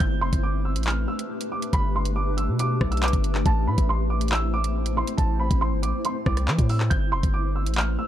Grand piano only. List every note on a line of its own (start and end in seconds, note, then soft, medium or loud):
0.00 0.19 G6 loud
0.21 0.41 C6 medium
0.43 0.63 D6 medium
0.65 0.84 E6 medium
0.86 1.05 F6 medium
1.08 1.49 E6 medium
1.52 1.71 D6 medium
1.73 1.92 B5 loud
1.96 2.15 C6 medium
2.16 2.35 D6 medium
2.37 2.57 E6 medium
2.60 2.90 D6 medium
2.91 3.01 E6 medium
3.03 3.43 D6 medium
3.46 3.65 A5 loud
3.67 3.87 B5 medium
3.89 4.08 C6 medium
4.10 4.29 D6 medium
4.32 4.51 E6 medium
4.54 4.94 D6 medium
4.97 5.16 C6 medium
5.18 5.37 A5 medium
5.40 5.59 B5 medium
5.61 5.81 C6 medium
5.83 6.02 D6 medium
6.05 6.24 C6 medium
6.26 6.67 D6 medium
6.70 6.89 E6 medium
6.90 7.10 G6 medium
7.12 7.32 C6 medium
7.34 7.53 D6 medium
7.56 7.75 E6 medium
7.76 7.96 F6 medium
7.99 8.07 E6 medium